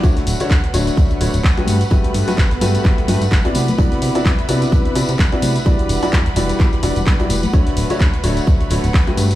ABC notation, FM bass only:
X:1
M:4/4
L:1/16
Q:"Swing 16ths" 1/4=128
K:D
V:1 name="FM bass" clef=bass
D,, z D,,, z D,, z D,,, z D,, z D,,, D,,, D,, z G,, z | G,,, z G,, z G,,, z G,, z G,,, z G,, G,, G,,, z =C, z | =C,, z =C, z C,, z C, z C,, z C, C, C,, z C, z | E,, z E,,, z E,, z E,,, z E,, z E,,, E,,, E,, z E,,, z |
D,, z D,,, z D,, z D,,, z D,, z D,,, D,,, D,, z G,, z |]